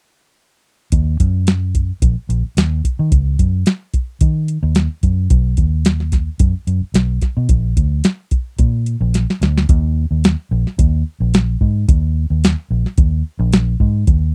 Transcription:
0.92 1.16 D#2 medium
0.92 kick medium
0.92 closed hi-hat medium
1.20 1.91 F#2 medium
1.20 kick medium
1.20 closed hi-hat medium
1.47 snare loud
1.47 closed hi-hat medium
1.75 kick medium
1.75 closed hi-hat medium
2.02 2.14 A#1 medium
2.02 kick loud
2.02 closed hi-hat medium
2.29 2.42 A#1 medium
2.29 closed hi-hat medium
2.44 muted fingered electric bass stroke soft
2.57 2.80 D#2 medium
2.57 snare loud
2.57 closed hi-hat medium
2.84 kick medium
2.84 closed hi-hat medium
2.99 3.10 D#3 medium
3.12 3.35 C#2 medium
3.12 kick medium
3.12 closed hi-hat medium
3.39 3.63 F#2 medium
3.39 kick medium
3.39 closed hi-hat medium
3.66 snare medium
3.66 closed hi-hat medium
3.94 kick medium
3.94 closed hi-hat soft
4.21 4.57 D#3 medium
4.21 kick loud
4.21 closed hi-hat medium
4.48 closed hi-hat medium
4.63 4.86 D#2 medium
4.75 snare medium
4.75 closed hi-hat medium
5.03 5.27 F#2 medium
5.03 kick medium
5.03 closed hi-hat soft
5.30 5.54 B1 medium
5.30 kick loud
5.30 closed hi-hat medium
5.57 6.28 D#2 medium
5.57 kick medium
5.57 closed hi-hat medium
5.85 snare medium
5.85 closed hi-hat medium
6.00 snare soft
6.12 kick medium
6.12 snare soft
6.12 closed hi-hat medium
6.39 6.52 F#2 medium
6.39 kick loud
6.39 closed hi-hat medium
6.67 6.80 F#2 medium
6.67 closed hi-hat medium
6.82 muted fingered electric bass stroke soft
6.94 7.18 B1 medium
6.94 snare medium
6.94 closed hi-hat medium
7.22 kick medium
7.22 snare soft
7.22 closed hi-hat medium
7.37 7.48 B2 medium
7.49 7.73 A#1 medium
7.49 kick loud
7.49 closed hi-hat medium
7.77 8.00 D2 medium
7.77 kick medium
7.77 closed hi-hat medium
8.04 snare medium
8.04 closed hi-hat medium
8.31 kick medium
8.31 closed hi-hat medium
8.58 8.95 A#2 medium
8.58 kick loud
8.58 closed hi-hat medium
8.86 closed hi-hat medium
9.01 9.24 A#1 loud
9.14 snare soft
9.14 closed hi-hat medium
9.30 snare soft
9.41 9.65 D2 medium
9.41 snare medium
9.41 closed hi-hat medium
9.57 snare medium
9.69 10.05 D#2 medium
9.69 kick loud
9.69 closed hi-hat medium
10.11 10.34 D#2 medium
10.24 snare loud
10.24 closed hi-hat medium
10.51 10.64 A#1 medium
10.66 muted fingered electric bass stroke soft
10.66 snare soft
10.78 11.02 D#2 medium
10.78 kick loud
10.78 closed hi-hat medium
11.20 11.55 A#1 medium
11.34 snare loud
11.34 closed hi-hat medium
11.61 11.84 G#2 medium
11.61 kick medium
11.89 12.25 D#2 medium
11.89 kick loud
11.89 closed hi-hat medium
12.30 12.54 D#2 medium
12.44 snare loud
12.44 closed hi-hat medium
12.70 12.83 A#1 medium
12.85 muted fingered electric bass stroke soft
12.85 snare soft
12.98 13.21 D#2 medium
12.98 kick loud
12.98 closed hi-hat medium
13.39 13.74 A#1 loud
13.53 snare loud
13.53 closed hi-hat medium
13.80 14.04 G#2 medium
13.80 kick medium
14.07 14.35 D#2 medium
14.07 kick medium
14.07 closed hi-hat medium

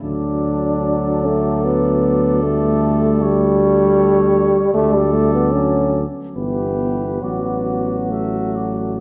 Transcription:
0.03 4.70 D2 medium
0.03 2.39 F#3 medium
0.03 1.27 D4 medium
0.03 4.69 A4 medium
0.03 3.24 D5 medium
1.25 1.66 A3 medium
1.65 2.43 B3 medium
2.43 5.54 G3 medium
2.43 3.19 A3 medium
3.22 4.71 G3 loud
3.22 4.74 C#5 medium
4.74 6.04 D2 medium
4.74 4.95 A3 loud
4.74 6.04 A4 medium
4.74 6.04 D5 medium
4.94 5.15 G3 medium
5.13 5.33 A3 medium
5.34 5.54 B3 medium
5.53 6.07 F#3 medium
5.53 6.07 C#4 medium
6.35 7.18 G1 medium
6.35 7.23 E3 soft
6.35 7.18 B3 medium
6.35 7.24 G4 soft
6.35 7.25 B4 soft
7.22 9.00 A1 soft
7.22 9.00 F#3 soft
7.22 8.12 B3 medium
7.22 9.00 F#4 soft
7.22 8.02 D5 soft
8.10 9.00 A3 soft
8.10 8.57 E5 soft
8.56 9.00 D5 soft

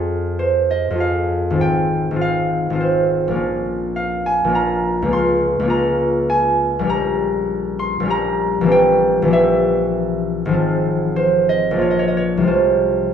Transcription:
0.00 0.89 F2 soft
0.00 0.91 C4 soft
0.00 0.94 F4 soft
0.00 0.97 G#4 soft
0.39 2.79 C5 medium
0.71 1.21 D#5 medium
0.90 1.58 F2 soft
0.90 1.52 C4 soft
0.95 1.55 F4 soft
0.95 3.40 G#4 soft
1.00 2.20 F5 medium
1.50 2.10 G#1 soft
1.50 2.12 C4 soft
1.56 2.15 F4 soft
1.61 2.63 G5 medium
2.11 2.69 G#1 soft
2.11 2.72 C4 soft
2.16 2.74 F4 soft
2.21 3.95 F5 medium
2.70 3.36 G#1 soft
2.70 3.37 C4 soft
2.75 3.34 F4 soft
2.81 3.41 C5 medium
3.28 4.43 A#1 soft
3.28 4.46 A#3 soft
3.33 4.48 C#4 soft
3.33 4.51 F4 soft
3.96 6.92 F5 medium
4.26 4.75 G#5 medium
4.44 5.10 A#1 soft
4.44 5.04 A#3 soft
4.49 5.07 C#4 soft
4.49 5.10 F4 soft
4.55 5.68 A#5 medium
5.02 5.58 C#2 soft
5.02 5.61 A#3 soft
5.08 5.64 C#4 soft
5.08 5.66 F4 soft
5.13 6.13 C6 medium
5.60 6.87 C#2 medium
5.60 9.52 A#3 soft
5.65 6.83 C#4 soft
5.65 6.91 F4 soft
5.70 6.88 A#5 medium
6.30 7.31 G#5 medium
6.79 7.99 A#1 medium
6.79 8.02 G3 soft
6.84 8.04 C#4 soft
6.84 8.07 G4 soft
6.89 8.09 A#5 medium
7.79 8.31 C6 medium
8.00 8.60 A#1 medium
8.00 10.55 G3 soft
8.05 8.71 C#4 soft
8.05 8.67 G4 soft
8.10 10.59 A#5 medium
8.61 9.21 A#1 medium
8.61 9.24 E3 soft
8.66 9.26 C4 soft
8.66 9.29 G4 soft
8.72 10.59 G5 medium
9.22 10.54 A#1 medium
9.22 10.56 E3 soft
9.28 10.50 C4 soft
9.28 10.58 G4 soft
9.33 10.59 E5 medium
10.45 11.78 G#1 medium
10.45 11.72 F3 soft
10.51 11.81 C4 soft
10.51 11.77 F4 soft
11.16 11.83 C5 medium
11.49 11.89 D#5 medium
11.71 12.46 A#1 soft
11.71 12.39 F3 soft
11.76 12.48 A#3 soft
11.76 12.44 F4 soft
11.81 11.96 C#5 medium
11.90 12.05 D#5 medium
11.99 12.13 C#5 soft
12.08 12.22 D#5 medium
12.17 12.52 C#5 medium
12.37 13.14 C2 soft
12.37 13.14 F3 soft
12.43 13.14 G#3 soft
12.43 13.14 F4 soft
12.48 13.14 C5 medium

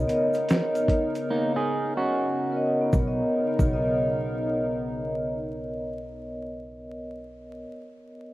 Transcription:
0.00 2.90 C#3 medium
0.00 0.08 B3 medium
0.00 2.89 B3 medium
0.00 2.90 D#4 medium
0.00 0.10 A#4 medium
0.00 2.90 A#4 medium
0.00 0.12 C#5 medium
0.00 0.14 D#5 medium
0.08 1.48 B3 medium
0.08 1.49 A#4 medium
0.08 closed hi-hat medium
0.08 shaker soft
0.12 1.50 C#5 medium
0.12 1.51 D#5 medium
0.33 closed hi-hat soft
0.33 shaker medium
0.49 snare loud
0.49 closed hi-hat medium
0.49 shaker medium
0.75 closed hi-hat soft
0.75 shaker soft
0.88 kick medium
0.88 closed hi-hat medium
1.15 closed hi-hat medium
1.15 shaker soft
1.30 1.55 A#3 medium
1.30 1.55 D#4 medium
1.56 1.95 D#4 medium
1.56 1.95 G#4 medium
1.97 2.89 C#4 medium
1.97 2.89 F#4 medium
2.50 2.80 B3 medium
2.50 2.88 A#4 medium
2.54 2.89 C#5 medium
2.54 2.90 D#5 medium
2.81 3.13 B3 medium
2.90 3.20 B1 loud
2.90 6.93 C#3 medium
2.90 6.93 B3 medium
2.90 6.93 D#4 medium
2.90 3.18 A#4 medium
2.90 6.93 A#4 medium
2.90 kick loud
2.90 shaker medium
2.98 3.23 C#5 medium
3.07 3.27 D#5 medium
3.48 7.58 B3 medium
3.56 7.64 B1 medium
3.56 7.62 A#4 medium
3.56 kick loud
3.56 shaker medium
3.65 7.66 C#5 medium
3.73 7.70 D#5 medium

